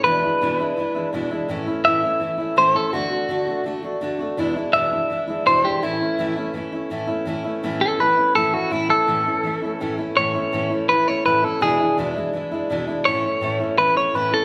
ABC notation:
X:1
M:4/4
L:1/8
Q:1/4=166
K:A
V:1 name="Clean electric guitar"
B6 z2 | z2 e4 =c A | F4 z4 | z2 e4 =c =G |
E4 z4 | z3 A B2 A F | E A6 z | c4 B c B A |
G2 z6 | c4 B c B A |]
V:2 name="Steel-string acoustic guitar"
[E,,B,,E,G,DE] [E,G,DE] [E,,B,,E,G,DE] [E,G,DE] [E,G,DE] [E,G,DE] [E,,B,,E,G,DE] [E,G,DE] | [A,,E,A,CE] [A,CE] [A,,E,A,CE] [A,CE] [E,A,CE] [A,CE] [A,,E,A,CE] [A,CE] | [D,A,DF] [A,DF] [D,A,DF] [A,DF] [D,A,DF] [A,DF] [D,A,DF] [A,DF] | [E,,B,,E,G,DE] [E,G,DE] [E,,B,,E,G,DE] [E,G,DE] [E,G,DE] [E,G,DE] [E,,B,,E,G,DE] [E,G,DE] |
[A,,E,A,CE] [A,CE] [A,,E,A,CE] [A,CE] [E,A,CE] [A,CE] [A,,E,A,CE] [A,CE] | [A,,E,A,CE] [A,CE] [A,,E,A,CE] [A,CE] [E,A,CE] [A,CE] [A,,E,A,CE] [A,CE] | [A,,E,A,CE] [A,CE] [A,,E,A,CE] [A,CE] [E,A,CE] [A,CE] [A,,E,A,CE] [A,CE] | [A,,E,A,CE] [A,CE] [A,,E,A,CE] [A,CE] [E,A,CE] [A,CE] [A,,E,A,CE] [A,CE] |
[E,,B,,E,G,DE] [E,G,DE] [E,,B,,E,G,DE] [E,G,DE] [E,G,DE] [E,G,DE] [E,,B,,E,G,DE] [E,G,DE] | [A,,E,A,CE] [A,CE] [A,,E,A,CE] [A,CE] [E,A,CE] [A,CE] [A,,E,A,CE] [A,CE] |]